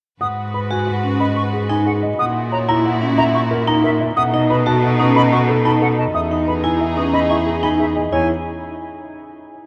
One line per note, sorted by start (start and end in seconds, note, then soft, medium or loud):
0.21 2.09 G#2 medium
0.21 1.98 F#4 medium
0.21 1.98 B4 medium
0.21 0.43 F#5 medium
0.21 0.27 D#6 medium
0.54 0.76 B4 medium
0.54 0.60 B5 medium
0.71 0.92 F#4 medium
0.71 0.92 G#5 medium
0.87 1.09 F#5 soft
1.04 1.25 C#4 medium
1.20 1.42 D#5 medium
1.20 1.26 B5 medium
1.36 1.43 C#6 medium
1.53 1.75 G#4 medium
1.69 1.91 D#4 medium
1.69 1.91 G#5 medium
1.86 2.08 G#4 medium
1.86 1.92 F#5 medium
2.03 2.24 D#5 medium
2.19 4.06 A#2 medium
2.19 3.96 E4 medium
2.19 3.96 F#4 medium
2.19 2.41 F#5 medium
2.19 2.25 D#6 medium
2.52 2.74 C#5 medium
2.52 2.58 A#5 medium
2.69 2.90 E4 medium
2.69 2.90 A#5 medium
2.85 3.06 F#5 medium
3.02 3.23 C#4 medium
3.18 3.39 E5 medium
3.18 3.24 A#5 medium
3.35 3.41 C#6 medium
3.51 3.72 A#4 medium
3.67 3.89 D#4 medium
3.67 3.89 A#5 medium
3.84 4.05 A#4 medium
3.84 3.90 E5 medium
4.01 4.22 E5 medium
4.16 6.04 B2 medium
4.16 5.94 D#4 medium
4.16 5.94 A4 medium
4.16 4.38 F#5 medium
4.16 4.23 D#6 loud
4.34 4.55 D#4 medium
4.34 4.55 D#5 medium
4.50 4.71 B4 medium
4.50 4.56 B5 medium
4.66 4.88 F#4 medium
4.66 4.88 A5 loud
4.83 5.04 F#5 medium
4.99 5.21 C#4 medium
4.99 5.21 B4 medium
4.99 5.05 D#6 medium
5.16 5.37 D#5 medium
5.16 5.22 B5 loud
5.32 5.54 F#4 medium
5.32 5.54 F#5 medium
5.32 5.38 C#6 medium
5.49 5.70 A4 medium
5.65 5.87 D#4 medium
5.65 5.87 A5 medium
5.65 5.71 B5 medium
5.82 6.03 A4 medium
5.82 5.88 F#5 medium
5.98 6.20 D#5 medium
5.98 6.04 A5 medium
6.15 8.02 E2 medium
6.15 7.92 D#4 medium
6.15 7.92 G#4 medium
6.15 6.36 E5 medium
6.15 6.21 D#6 medium
6.31 6.53 D#4 medium
6.31 6.53 D#5 soft
6.47 6.69 B4 medium
6.47 6.54 B5 medium
6.64 6.85 E4 medium
6.64 6.85 G#5 medium
6.81 7.02 E5 medium
6.97 7.18 C#4 medium
6.97 7.18 B4 medium
6.97 7.03 D#6 medium
7.13 7.35 D#5 medium
7.13 7.20 B5 medium
7.30 7.51 E4 medium
7.30 7.51 E5 medium
7.30 7.36 C#6 medium
7.46 7.68 G#4 medium
7.63 7.84 D#4 medium
7.63 7.85 G#5 medium
7.63 7.69 B5 medium
7.79 8.01 G#4 medium
7.79 7.85 E5 medium
7.96 8.17 D#5 medium
7.96 8.02 G#5 medium
8.12 8.28 E2 medium
8.12 8.28 E4 medium
8.12 8.28 C#5 medium
8.12 8.28 G#5 medium